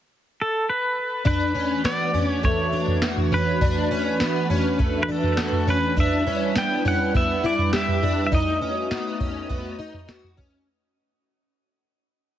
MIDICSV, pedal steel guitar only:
0, 0, Header, 1, 2, 480
1, 0, Start_track
1, 0, Tempo, 588235
1, 1029, Time_signature, 4, 2, 24, 8
1, 10108, End_track
2, 0, Start_track
2, 0, Title_t, "Pedal steel guitar"
2, 0, Program_c, 0, 26
2, 338, Note_on_c, 0, 69, 64
2, 567, Note_on_c, 0, 71, 80
2, 570, Note_off_c, 0, 69, 0
2, 1005, Note_off_c, 0, 71, 0
2, 1036, Note_on_c, 0, 71, 86
2, 1510, Note_off_c, 0, 71, 0
2, 1513, Note_on_c, 0, 74, 89
2, 1864, Note_off_c, 0, 74, 0
2, 1864, Note_on_c, 0, 73, 89
2, 1994, Note_off_c, 0, 73, 0
2, 1997, Note_on_c, 0, 73, 78
2, 2440, Note_off_c, 0, 73, 0
2, 2726, Note_on_c, 0, 71, 73
2, 4094, Note_off_c, 0, 71, 0
2, 4103, Note_on_c, 0, 71, 64
2, 4155, Note_off_c, 0, 71, 0
2, 4177, Note_on_c, 0, 69, 63
2, 4653, Note_on_c, 0, 71, 82
2, 4657, Note_off_c, 0, 69, 0
2, 4888, Note_off_c, 0, 71, 0
2, 4897, Note_on_c, 0, 76, 99
2, 5367, Note_off_c, 0, 76, 0
2, 5370, Note_on_c, 0, 79, 81
2, 5606, Note_off_c, 0, 79, 0
2, 5612, Note_on_c, 0, 78, 81
2, 5844, Note_off_c, 0, 78, 0
2, 5847, Note_on_c, 0, 76, 96
2, 6085, Note_off_c, 0, 76, 0
2, 6086, Note_on_c, 0, 74, 69
2, 6301, Note_off_c, 0, 74, 0
2, 6333, Note_on_c, 0, 76, 85
2, 6735, Note_off_c, 0, 76, 0
2, 6745, Note_on_c, 0, 76, 50
2, 6795, Note_off_c, 0, 76, 0
2, 6810, Note_on_c, 0, 75, 78
2, 8207, Note_off_c, 0, 75, 0
2, 10108, End_track
0, 0, End_of_file